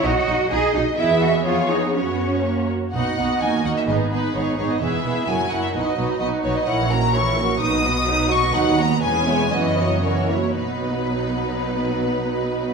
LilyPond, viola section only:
\new Staff \with { instrumentName = "Viola section" } { \time 2/4 \key b \major \tempo 4 = 127 <dis' fis'>8 <dis' fis'>8 <dis' fis'>8 <dis' fis'>8 | <b gis'>4 <b gis'>4 | <b fis'>4 <ais fis'>8 r8 | <b dis'>8 <b dis'>8 <ais dis'>8 <ais dis'>8 |
<b dis'>8 <b dis'>8 <b dis'>8 <b dis'>8 | <b e'>8 <b e'>8 <fis e'>8 <fis e'>8 | <fis dis'>8 <fis dis'>8 <fis dis'>8 <fis dis'>8 | <e e'>8 <fis cis'>8 <e e'>8 <fis cis'>8 |
<fis dis'>8 <b fis'>8 <fis dis'>8 <b fis'>8 | <fis dis'>8 <b fis'>8 <b cis'>8 <gis b>8 | <e cis'>8 <fis b>8 <e cis'>8 <fis ais>8 | <fis b>2~ |
<fis b>2 | }